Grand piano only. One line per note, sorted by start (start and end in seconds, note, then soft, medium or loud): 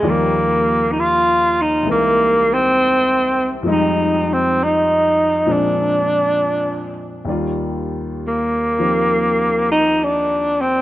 0.02 1.83 D#2 soft
0.02 1.84 D#3 soft
0.02 1.84 F3 soft
0.02 1.84 G3 soft
0.02 1.84 D5 medium
1.83 3.64 C2 soft
1.83 3.65 C3 soft
1.83 3.65 E3 soft
1.83 3.65 G#3 soft
1.87 3.66 A#3 soft
1.87 3.66 D#4 soft
3.63 5.44 F2 medium
3.63 5.45 F3 soft
3.63 5.46 G3 soft
3.63 5.46 G#3 soft
3.67 5.47 D#4 medium
5.46 7.28 A#2 soft
5.46 7.28 F3 soft
5.46 7.28 G#3 soft
5.46 7.29 C4 soft
5.46 7.29 D4 soft
7.25 10.82 D#2 soft
7.25 8.77 D#3 soft
7.25 10.82 G3 soft
7.29 10.82 F4 soft
7.29 10.82 D5 soft
8.79 10.82 D#3 soft
8.79 10.82 F3 soft
8.79 10.82 C4 soft
8.79 10.82 G4 soft